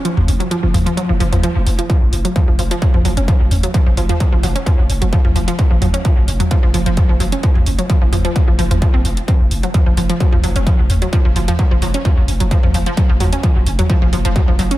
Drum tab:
HH |x-oxx-oxx-oxx-ox|x-oxx-oxx-oxx-ox|x-oxx-oxx-oxx-ox|x-oxx-oxx-oxx-ox|
T2 |-o----o----o----|----o----o----o-|---o----o----o--|--o----o----o---|
BD |----------------|o---o---o---o---|o---o---o---o---|o---o---o---o---|

HH |x-oxx-oxx-oxx-ox|x-oxx-oxx-oxx-ox|x-oxx-oxx-oxx-ox|x-oxx-oxx-oxx-ox|
T2 |-o----o----o----|----o----o----o-|---o----o----o--|--o----o----o---|
BD |o---o---o---o---|o---o---o---o---|o---o---o---o---|o---o---o---o---|